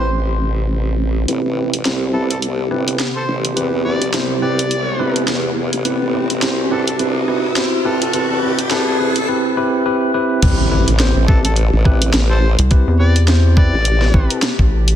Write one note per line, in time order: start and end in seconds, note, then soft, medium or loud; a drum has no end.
0.00 1.26 A1 medium
0.00 1.24 C3 medium
0.00 1.24 C4 medium
0.00 0.14 C5 loud
0.00 1.28 C5 medium
1.28 1.42 A1 loud
1.28 9.24 C3 medium
1.28 9.24 B3 medium
1.28 1.54 C4 medium
1.28 1.54 E4 medium
1.28 5.81 G4 medium
1.28 1.54 G4 medium
1.28 1.54 B4 medium
1.28 closed hi-hat medium
1.28 riser medium
1.45 1.71 A1 loud
1.57 1.74 C4 medium
1.57 1.74 E4 medium
1.57 1.74 G4 medium
1.57 1.74 B4 medium
1.73 1.83 A1 loud
1.73 closed hi-hat medium
1.85 2.69 C2 medium
1.85 2.11 C4 medium
1.85 2.11 E4 medium
1.85 2.11 G4 medium
1.85 2.11 C5 medium
1.85 snare loud
1.85 closed hi-hat soft
2.13 2.31 C4 medium
2.13 2.31 E4 medium
2.13 2.31 G4 medium
2.13 2.24 A4 medium
2.13 2.31 B4 loud
2.31 2.38 A4 medium
2.31 closed hi-hat medium
2.42 closed hi-hat medium
2.71 2.98 G1 loud
2.71 2.96 C4 medium
2.71 2.96 E4 medium
2.71 2.96 G4 medium
2.71 2.96 B4 loud
2.71 cross-stick soft
2.88 closed hi-hat medium
3.00 snare loud
3.00 closed hi-hat medium
3.16 3.23 A4 medium
3.16 3.35 C5 medium
3.28 3.55 A1 medium
3.45 closed hi-hat medium
3.56 4.12 E2 medium
3.56 3.82 C4 medium
3.56 3.82 E4 medium
3.56 3.82 G4 medium
3.56 3.82 B4 medium
3.56 closed hi-hat medium
3.85 4.02 C4 medium
3.85 4.02 E4 medium
3.85 4.02 G4 medium
3.85 4.02 B4 medium
3.85 4.07 D5 loud
4.02 closed hi-hat medium
4.14 4.98 C2 loud
4.14 4.40 C4 medium
4.14 4.40 E4 medium
4.14 4.40 G4 medium
4.14 4.40 C5 medium
4.14 snare loud
4.14 closed hi-hat medium
4.42 4.59 C4 medium
4.42 4.59 E4 medium
4.42 4.59 G4 medium
4.42 4.59 B4 loud
4.42 5.23 D5 medium
4.59 closed hi-hat medium
4.71 closed hi-hat medium
4.99 5.26 G1 medium
4.99 5.24 C4 loud
4.99 5.24 E4 medium
4.99 5.24 G4 medium
4.99 5.24 B4 loud
5.16 closed hi-hat medium
5.28 5.70 E2 medium
5.28 snare loud
5.28 closed hi-hat medium
5.73 5.83 A1 loud
5.73 closed hi-hat medium
5.85 5.99 A1 medium
5.85 6.11 C4 medium
5.85 6.11 E4 medium
5.85 9.25 F#4 medium
5.85 6.11 G4 medium
5.85 6.11 B4 medium
5.85 closed hi-hat medium
6.02 6.28 A1 loud
6.13 6.31 C4 medium
6.13 6.31 E4 medium
6.13 6.31 G4 medium
6.13 6.31 B4 medium
6.30 6.41 A1 loud
6.30 closed hi-hat medium
6.42 7.26 C2 medium
6.42 6.68 C4 medium
6.42 6.68 E4 medium
6.42 6.68 G4 medium
6.42 6.68 C5 medium
6.42 snare loud
6.42 closed hi-hat medium
6.71 6.88 C4 medium
6.71 6.88 E4 medium
6.71 6.88 G4 medium
6.71 6.82 A4 medium
6.71 6.88 B4 loud
6.88 6.95 A4 medium
6.88 closed hi-hat medium
6.99 7.25 C4 medium
6.99 7.25 E4 medium
6.99 7.25 G4 medium
6.99 7.25 B4 medium
6.99 closed hi-hat medium
7.28 7.55 G1 medium
7.28 7.45 C4 medium
7.28 7.45 E4 medium
7.28 7.45 G4 medium
7.28 7.45 B4 medium
7.28 cross-stick soft
7.38 cross-stick soft
7.47 cross-stick soft
7.56 7.83 C4 medium
7.56 7.83 E4 medium
7.56 7.83 G4 medium
7.56 7.82 C5 medium
7.56 snare loud
7.56 closed hi-hat medium
7.85 8.12 A1 loud
7.85 8.02 C4 medium
7.85 8.02 E4 medium
7.85 8.02 G4 medium
7.85 7.96 A4 medium
7.85 8.02 B4 loud
8.02 8.10 A4 medium
8.02 closed hi-hat medium
8.13 8.69 E2 medium
8.13 8.40 C4 medium
8.13 8.40 E4 medium
8.13 8.40 G4 medium
8.13 8.25 A4 medium
8.13 8.40 B4 medium
8.13 closed hi-hat medium
8.31 8.38 A4 medium
8.43 8.60 C4 medium
8.43 8.60 E4 medium
8.43 8.60 G4 medium
8.43 8.60 B4 medium
8.59 closed hi-hat medium
8.71 8.98 C2 medium
8.71 8.97 C4 medium
8.71 8.97 E4 medium
8.71 8.97 G4 medium
8.71 8.82 A4 medium
8.71 8.97 B4 loud
8.71 snare loud
8.71 closed hi-hat soft
8.87 8.95 A4 medium
9.00 9.14 E2 loud
9.00 9.17 C4 medium
9.00 9.17 E4 medium
9.00 9.17 G4 medium
9.00 9.17 B4 medium
9.16 9.28 A1 loud
9.16 closed hi-hat medium
9.28 9.54 C4 medium
9.28 9.54 E4 medium
9.28 9.54 G4 medium
9.28 9.54 B4 loud
9.57 9.83 C4 medium
9.57 9.83 E4 medium
9.57 9.83 G4 medium
9.57 9.83 B4 loud
9.86 10.11 C4 medium
9.86 10.11 E4 medium
9.86 10.11 G4 medium
9.86 10.11 B4 loud
10.14 10.40 C4 medium
10.14 10.40 E4 medium
10.14 10.40 G4 medium
10.14 10.40 B4 loud
10.42 10.85 A1 loud
10.42 14.96 B2 medium
10.42 14.96 C3 medium
10.42 10.69 C4 medium
10.42 10.69 E4 medium
10.42 14.96 G4 medium
10.42 10.68 G4 medium
10.42 10.68 B4 loud
10.42 kick loud
10.42 closed hi-hat medium
10.42 crash loud
10.42 impact medium
10.71 10.88 C4 medium
10.71 10.88 E4 medium
10.71 10.88 G4 medium
10.71 10.88 B4 medium
10.88 11.14 A1 loud
10.88 closed hi-hat medium
11.00 11.25 C4 medium
11.00 11.25 E4 medium
11.00 11.25 G4 medium
11.00 11.25 C5 medium
11.00 snare loud
11.00 closed hi-hat medium
11.16 11.71 A1 loud
11.28 11.46 C4 medium
11.28 11.46 E4 medium
11.28 11.46 G4 medium
11.28 11.39 A4 medium
11.28 11.46 B4 loud
11.28 kick loud
11.45 11.52 A4 medium
11.45 closed hi-hat medium
11.56 closed hi-hat medium
11.73 12.12 A1 loud
11.85 12.10 C4 loud
11.85 12.10 E4 medium
11.85 12.10 G4 medium
11.85 12.10 B4 loud
11.85 kick medium
11.85 cross-stick soft
12.02 closed hi-hat medium
12.14 12.56 A1 medium
12.14 snare loud
12.14 closed hi-hat medium
12.30 12.39 A4 medium
12.30 12.49 C5 medium
12.59 12.85 C2 loud
12.59 closed hi-hat medium
12.71 12.97 C4 medium
12.71 12.97 E4 medium
12.71 12.97 G4 medium
12.71 12.97 B4 medium
12.71 kick loud
12.71 closed hi-hat medium
12.87 13.71 E2 medium
12.99 13.17 C4 medium
12.99 13.17 E4 medium
12.99 13.17 G4 medium
12.99 13.17 B4 medium
12.99 13.21 D5 loud
13.16 closed hi-hat medium
13.28 13.54 C4 medium
13.28 13.54 E4 medium
13.28 13.54 G4 medium
13.28 13.54 C5 medium
13.28 snare loud
13.28 closed hi-hat medium
13.57 13.74 C4 loud
13.57 13.74 E4 medium
13.57 13.74 G4 medium
13.57 13.74 B4 loud
13.57 14.38 D5 medium
13.57 kick loud
13.73 14.12 A1 loud
13.85 closed hi-hat medium
14.02 snare soft
14.14 14.28 A1 loud
14.14 14.38 C4 loud
14.14 14.39 E4 medium
14.14 14.39 G4 medium
14.14 14.39 B4 loud
14.14 kick loud
14.30 closed hi-hat medium
14.42 snare loud
14.42 closed hi-hat medium
14.59 14.96 A1 loud
14.59 kick medium
14.88 closed hi-hat medium